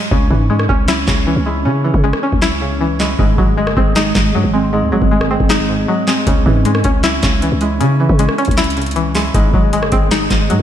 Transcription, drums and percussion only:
0.11 kick loud
0.31 kick medium
0.59 cross-stick medium
0.69 kick loud
0.88 snare loud
0.88 clap loud
1.08 kick medium
1.08 snare medium
1.08 clap medium
1.94 kick loud
2.13 cross-stick medium
2.33 kick medium
2.42 snare loud
2.42 clap loud
3.00 snare loud
3.00 clap medium
3.19 kick loud
3.38 kick medium
3.67 cross-stick loud
3.77 kick loud
3.96 snare loud
3.96 clap loud
4.15 kick medium
4.15 snare medium
4.15 clap medium
5.02 kick loud
5.21 cross-stick medium
5.40 kick medium
5.50 snare loud
5.50 clap loud
6.08 snare loud
6.08 clap medium
6.27 kick loud
6.27 closed hi-hat medium
6.46 kick medium
6.65 closed hi-hat medium
6.75 cross-stick loud
6.84 kick loud
6.84 closed hi-hat medium
7.04 snare loud
7.04 clap loud
7.04 closed hi-hat medium
7.23 kick loud
7.23 snare medium
7.23 clap medium
7.23 closed hi-hat medium
7.42 closed hi-hat medium
7.61 closed hi-hat medium
7.81 closed hi-hat medium
8.09 kick medium
8.19 closed hi-hat medium
8.29 cross-stick medium
8.38 closed hi-hat soft
8.45 kick medium
8.45 closed hi-hat medium
8.51 closed hi-hat medium
8.58 snare loud
8.58 clap loud
8.58 closed hi-hat medium
8.64 closed hi-hat medium
8.70 closed hi-hat medium
8.77 closed hi-hat medium
8.82 closed hi-hat medium
8.86 closed hi-hat medium
8.91 closed hi-hat medium
8.96 closed hi-hat medium
9.15 snare loud
9.15 clap medium
9.15 open hi-hat medium
9.34 kick loud
9.34 closed hi-hat medium
9.54 kick loud
9.73 closed hi-hat medium
9.83 cross-stick loud
9.92 kick loud
9.92 closed hi-hat medium
10.11 snare loud
10.11 clap loud
10.11 closed hi-hat medium
10.30 kick loud
10.30 snare medium
10.30 clap medium
10.30 closed hi-hat medium
10.50 closed hi-hat medium

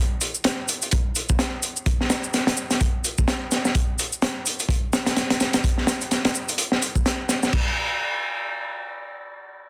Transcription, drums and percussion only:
0.21 closed hi-hat medium
0.21 shaker medium
0.35 shaker soft
0.44 snare loud
0.44 closed hi-hat medium
0.44 shaker soft
0.68 closed hi-hat medium
0.68 shaker medium
0.82 closed hi-hat soft
0.82 shaker soft
0.91 kick loud
0.91 closed hi-hat medium
0.91 shaker soft
1.15 closed hi-hat medium
1.15 shaker medium
1.29 kick medium
1.29 shaker soft
1.39 snare loud
1.39 closed hi-hat medium
1.39 shaker soft
1.63 closed hi-hat medium
1.63 shaker medium
1.77 shaker soft
1.86 kick loud
1.86 closed hi-hat medium
1.86 shaker soft
2.01 snare soft
2.10 snare loud
2.10 closed hi-hat medium
2.10 shaker medium
2.24 shaker soft
2.34 snare soft
2.34 closed hi-hat medium
2.34 shaker soft
2.47 snare loud
2.47 closed hi-hat medium
2.57 shaker medium
2.71 snare soft
2.71 closed hi-hat medium
2.71 shaker soft
2.81 kick medium
2.81 closed hi-hat medium
2.81 shaker soft
3.04 closed hi-hat medium
3.04 shaker medium
3.18 kick medium
3.18 shaker soft
3.28 snare loud
3.28 closed hi-hat medium
3.28 shaker soft
3.51 snare medium
3.51 closed hi-hat medium
3.51 shaker medium
3.65 snare medium
3.65 shaker soft
3.75 kick loud
3.75 closed hi-hat medium
3.75 shaker soft
3.99 closed hi-hat medium
3.99 shaker medium
4.12 shaker soft
4.22 snare loud
4.22 closed hi-hat medium
4.22 shaker soft
4.46 closed hi-hat medium
4.46 shaker medium
4.59 closed hi-hat soft
4.59 shaker soft
4.69 kick loud
4.69 closed hi-hat medium
4.69 shaker soft
4.93 snare loud
4.93 closed hi-hat medium
4.93 shaker medium
5.06 snare loud
5.06 closed hi-hat medium
5.06 shaker soft
5.16 snare medium
5.16 closed hi-hat medium
5.16 shaker soft
5.30 snare medium
5.30 closed hi-hat medium
5.40 snare medium
5.40 closed hi-hat medium
5.40 shaker medium
5.53 snare loud
5.53 closed hi-hat medium
5.53 shaker soft
5.64 kick loud
5.64 closed hi-hat medium
5.64 shaker soft
5.78 snare soft
5.87 snare loud
5.87 closed hi-hat medium
5.87 shaker medium
6.01 closed hi-hat soft
6.01 shaker soft
6.11 snare soft
6.11 closed hi-hat medium
6.11 shaker soft
6.25 snare loud
6.25 closed hi-hat medium
6.34 closed hi-hat soft
6.34 shaker medium
6.49 closed hi-hat medium
6.49 shaker soft
6.58 closed hi-hat medium
6.58 shaker soft
6.72 snare soft
6.82 closed hi-hat medium
6.82 shaker medium
6.95 kick medium
6.95 shaker soft
7.06 snare loud
7.06 closed hi-hat medium
7.06 shaker soft
7.29 snare medium
7.29 closed hi-hat medium
7.29 shaker medium
7.43 snare medium
7.43 shaker soft
7.53 kick loud
7.53 crash medium

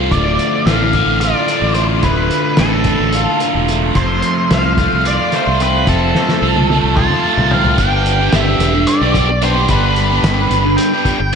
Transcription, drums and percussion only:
0.12 kick loud
0.12 closed hi-hat medium
0.39 closed hi-hat medium
0.67 snare loud
0.67 closed hi-hat medium
0.93 kick medium
0.93 closed hi-hat medium
1.21 closed hi-hat medium
1.48 closed hi-hat medium
1.75 closed hi-hat medium
2.03 kick loud
2.03 closed hi-hat medium
2.31 closed hi-hat medium
2.57 snare loud
2.57 closed hi-hat medium
2.84 kick medium
2.84 closed hi-hat medium
3.13 closed hi-hat medium
3.40 closed hi-hat medium
3.68 closed hi-hat medium
3.95 kick loud
3.95 closed hi-hat medium
4.22 closed hi-hat medium
4.51 snare loud
4.51 closed hi-hat medium
4.78 kick medium
4.78 closed hi-hat medium
5.05 closed hi-hat medium
5.32 snare soft
5.32 closed hi-hat medium
5.60 closed hi-hat medium
5.87 kick loud
5.87 closed hi-hat medium
6.15 snare soft
6.29 snare medium
6.56 high tom medium
6.70 high tom medium
6.97 kick loud
6.97 mid tom medium
7.10 mid tom medium
7.37 floor tom medium
7.51 floor tom medium
7.64 floor tom medium
7.78 kick loud
7.78 closed hi-hat loud
8.06 closed hi-hat medium
8.32 snare loud
8.32 closed hi-hat medium
8.60 snare soft
8.60 closed hi-hat medium
8.87 closed hi-hat medium
9.15 kick medium
9.15 closed hi-hat medium
9.42 closed hi-hat medium
9.69 kick loud
9.69 closed hi-hat medium
9.96 closed hi-hat medium
10.24 snare loud
10.24 closed hi-hat medium
10.51 closed hi-hat medium
10.78 closed hi-hat loud
11.05 kick medium
11.05 closed hi-hat medium

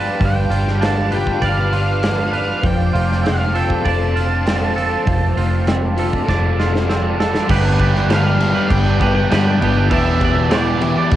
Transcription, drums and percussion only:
0.21 kick loud
0.21 open hi-hat medium
0.51 open hi-hat medium
0.68 snare soft
0.82 snare loud
0.82 open hi-hat medium
1.12 open hi-hat medium
1.27 kick medium
1.42 kick medium
1.42 open hi-hat medium
1.73 open hi-hat medium
2.03 snare loud
2.03 open hi-hat medium
2.34 open hi-hat soft
2.63 kick loud
2.63 open hi-hat medium
2.95 open hi-hat medium
3.12 snare soft
3.26 snare loud
3.26 open hi-hat medium
3.55 open hi-hat medium
3.70 kick medium
3.86 kick medium
3.86 open hi-hat medium
4.17 open hi-hat medium
4.47 snare loud
4.47 open hi-hat medium
4.78 open hi-hat medium
5.07 kick loud
5.07 open hi-hat medium
5.37 open hi-hat medium
5.67 snare loud
5.67 open hi-hat medium
5.98 open hi-hat medium
6.13 kick medium
6.28 kick medium
6.28 snare medium
6.60 snare medium
6.75 snare medium
6.90 snare medium
7.20 snare medium
7.35 snare medium
7.49 kick loud
7.49 crash loud
7.49 crash medium
7.79 kick medium
7.79 crash medium
7.96 snare soft
8.10 snare loud
8.10 crash medium
8.40 snare soft
8.40 crash medium
8.71 kick loud
8.71 crash medium
9.01 kick loud
9.01 crash medium
9.31 snare loud
9.31 crash medium
9.62 crash medium
9.91 kick loud
9.91 crash medium
10.21 kick medium
10.21 crash medium
10.51 snare loud
10.51 crash medium
10.81 crash medium
11.11 kick loud
11.11 crash medium

